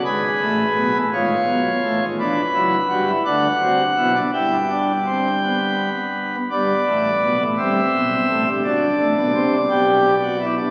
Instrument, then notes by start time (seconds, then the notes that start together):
pipe organ
0.05 G#1 G#2 G#4 B4
0.41 A1 A2
0.77 B1 B2
0.95 A1 A2
1.13 G#1 G#2 F4 C#5
1.48 B1 B2
1.84 A1 A2
2.02 G#1 G#2
2.19 E1 E2 D4 B4
2.54 F#1 F#2 E4
2.89 G1 G2 F#4
3.08 E4
3.25 D2 D3 D4 F#5
3.61 C2 C3 F#4
3.97 B1 B2 E4
4.15 D4
4.33 G1 G2 E4 G5
4.69 D4
5.06 C4
5.42 B3
6.51 G1 G2 B3 D5
6.87 A1 A2
7.22 B1 B2
7.40 A1 A2
7.58 G1 G2 C4 E5
7.93 B1 B2
8.28 A1 A2
8.46 G1 G2
8.64 F#1 F#2 D4 D5
9.00 A1 A2
9.17 B1 B2
9.34 C2 C3
9.69 B1 B2 G4
10.22 F#4
10.40 E4
10.57 D4